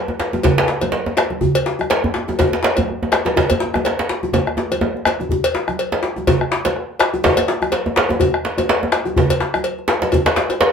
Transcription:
0.08 djembe slap, djembe tone
0.20 djembe slap
0.33 djembe tone, high conga
0.43 bombo low, cowbell, djembe slap, djembe bass, low conga
0.58 bombo rim, djembe slap
0.68 bombo rim, djembe slap
0.81 cowbell, djembe tone, high conga
0.92 bombo rim, djembe slap
1.06 djembe tone
1.17 bombo rim, cowbell, djembe slap
1.30 djembe slap, high conga
1.41 bombo low, low conga, djembe bass
1.55 cowbell, djembe slap
1.66 djembe slap
1.79 bombo rim, djembe tone, high conga
1.90 cowbell, djembe slap
2.04 djembe slap, djembe bass
2.14 djembe slap
2.28 djembe tone, high conga
2.39 bombo low, cowbell, djembe slap, djembe bass, low conga
2.53 djembe slap
2.63 djembe slap
2.64 bombo rim, djembe slap
2.77 cowbell, djembe tone, high conga, djembe bass
2.87 bombo rim, djembe slap
3.03 djembe tone
3.12 bombo rim, cowbell, djembe slap
3.25 djembe slap, djembe tone, high conga
3.36 bombo low, djembe slap, high conga, djembe bass, low conga
3.50 cowbell, djembe bass
3.60 djembe slap, high conga
3.74 bombo rim, djembe tone
3.75 djembe tone, high conga
3.85 bombo rim, cowbell, djembe slap
3.98 djembe slap
4.09 bombo rim, djembe slap
4.23 djembe slap, high conga, djembe tone
4.33 bombo low, cowbell, djembe slap, djembe tone, high conga, djembe bass, low conga
4.47 bombo rim, djembe slap
4.57 bombo rim, djembe slap, djembe tone
4.71 cowbell, djembe tone, high conga
4.81 djembe tone
4.97 high conga
5.05 bombo rim, cowbell, djembe slap, djembe tone, high conga
5.20 djembe tone, high conga
5.29 bombo low, djembe bass, low conga
5.44 cowbell, djembe slap
5.55 djembe slap, high conga
5.68 bombo rim, djembe tone, high conga
5.79 cowbell
5.92 djembe slap
6.03 djembe slap
6.16 djembe tone, high conga
6.27 bombo low, cowbell, djembe slap, djembe bass, low conga
6.41 bombo rim
6.51 bombo rim, djembe slap
6.65 cowbell, djembe slap, djembe tone, high conga
6.76 bombo rim, djembe slap
7.00 bombo rim, cowbell, djembe slap
7.14 djembe slap, djembe tone, high conga
7.24 bombo low, djembe slap, low conga, djembe bass
7.37 cowbell, djembe slap, djembe tone
7.48 djembe slap, high conga
7.62 bombo rim, djembe tone, high conga
7.72 cowbell, djembe slap
7.86 djembe slap, djembe tone
7.96 djembe slap
8.09 djembe tone, high conga
8.20 bombo low, cowbell, djembe bass, low conga
8.34 bombo rim
8.45 bombo rim, djembe slap
8.58 cowbell, djembe tone, high conga
8.68 bombo rim, djembe slap
8.83 djembe tone
8.92 bombo rim, cowbell, djembe slap
9.05 djembe slap, djembe tone, high conga
9.16 bombo low, djembe slap, djembe bass, low conga
9.30 cowbell, djembe slap, djembe tone
9.40 djembe slap, high conga
9.54 bombo rim, djembe tone, high conga
9.64 cowbell
9.79 djembe slap
9.88 djembe slap
10.02 djembe slap, djembe tone, high conga
10.12 bombo low, cowbell, djembe bass, low conga
10.26 bombo rim, djembe slap
10.36 djembe slap
10.49 cowbell, djembe tone
10.60 bombo rim, djembe slap

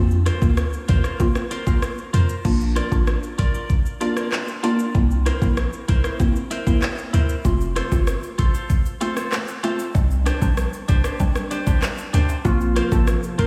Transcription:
Already playing: F2 A#3 C4 F4
0.11 shaker
0.26 F4 A#4 C5, cross-stick, closed hi-hat, shaker
0.42 D2 A#3 C4 F4, kick, shaker
0.57 cross-stick, shaker
0.73 shaker
0.88 D#2 F4 A#4 C5, kick, closed hi-hat, shaker
1.04 F4 A#4 C5, cross-stick, shaker
1.20 A#3 C4 F4, kick, shaker
1.35 cross-stick, shaker
1.51 F4 A#4 C5, closed hi-hat, shaker
1.66 A#3 C4 F4 A#4 C5, kick, shaker
1.82 cross-stick, shaker
1.98 shaker
2.13 F2 F4 A#4 C5, closed hi-hat, shaker
2.29 shaker
2.45 A#1 A#3 D4 F4, kick, crash, shaker
2.61 shaker
2.76 F4 A#4 D5, cross-stick, closed hi-hat, shaker
2.91 A1 A#3 D4 F4, kick, shaker
3.07 cross-stick, shaker
3.23 shaker
3.38 A#1 F4 A#4 D5, kick, closed hi-hat, shaker
3.54 F4 A#4 D5, shaker
3.70 kick, shaker
3.86 shaker
4.01 A#3 D4 F4 A#4 D5, closed hi-hat, shaker
4.16 F4 A#4 D5, cross-stick, shaker
4.32 cross-stick, clap, shaker
4.48 shaker
4.63 A#3 D4 F4 A#4 D5, closed hi-hat, shaker
4.79 shaker
4.95 C2 A#3 C4 E4, kick, shaker
5.11 shaker
5.26 E4 A#4 C5, cross-stick, closed hi-hat, shaker
5.42 A#1 A#3 C4 E4, kick, shaker
5.57 cross-stick, shaker
5.73 shaker
5.88 C2 E4 A#4 C5, kick, closed hi-hat, shaker
6.04 E4 A#4 C5, cross-stick, shaker
6.20 A#3 C4 E4, kick, shaker
6.36 shaker
6.51 E4 A#4 C5, closed hi-hat, shaker
6.66 A#3 C4 E4 A#4 C5, kick, shaker
6.82 cross-stick, clap, shaker
6.98 shaker
7.13 D2 E4 A#4 C5, closed hi-hat, shaker
7.29 shaker
7.45 F1 A3 C4 F4, kick, shaker
7.61 shaker
7.76 F4 A4 C5, cross-stick, closed hi-hat, shaker
7.92 G1 A3 C4 F4, kick, shaker
8.07 cross-stick, shaker
8.23 shaker
8.38 A1 F4 A4 C5, kick, closed hi-hat, shaker
8.54 F4 A4 C5, shaker
8.70 kick, shaker
8.86 shaker
9.01 A3 C4 F4 A4 C5, closed hi-hat, shaker
9.16 F4 A4 C5, cross-stick, shaker
9.32 cross-stick, clap, shaker
9.48 shaker
9.63 A3 C4 F4 A4 C5, closed hi-hat, shaker
9.79 shaker
9.95 C2 G3 C4 D4, kick, shaker
10.11 shaker
10.26 D4 G4 C5, cross-stick, closed hi-hat, shaker
10.41 A#1 G3 C4 D4, kick, shaker
10.57 cross-stick, shaker
10.73 shaker
10.88 C2 D4 G4 C5, kick, closed hi-hat, shaker
11.04 D4 G4 C5, cross-stick, shaker
11.20 G3 C4 D4, kick, shaker
11.35 cross-stick, shaker
11.51 D4 G4 C5, closed hi-hat, shaker
11.66 G3 C4 D4 G4 C5, kick, shaker
11.82 cross-stick, clap, shaker
11.98 shaker
12.13 D2 D4 G4 C5, closed hi-hat, high timbale, shaker
12.29 high timbale, shaker
12.45 A#1 C3 F3 A#3 C4 F4, kick, shaker
12.61 shaker
12.76 F4 A#4 C5, cross-stick, closed hi-hat, shaker
12.92 A1 A#3 C4 F4 A4, kick, shaker
13.07 cross-stick, shaker
13.23 shaker
13.38 A#1 F4 A#4 C5, kick, closed hi-hat, shaker

